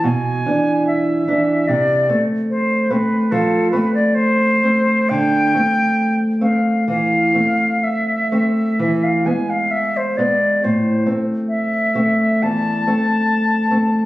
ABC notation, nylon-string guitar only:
X:1
M:4/4
L:1/8
Q:1/4=69
K:Am
V:1 name="Nylon-string guitar"
B,, [E,D]2 [E,D] C, [A,C]2 [A,C] | F, [A,C]2 [A,C] D, [A,C]2 [A,C] | E, [A,C]2 [A,C] E, [^G,B,]2 [G,B,] | A,, [A,C]2 [A,C] E,, [A,C]2 [A,C] |]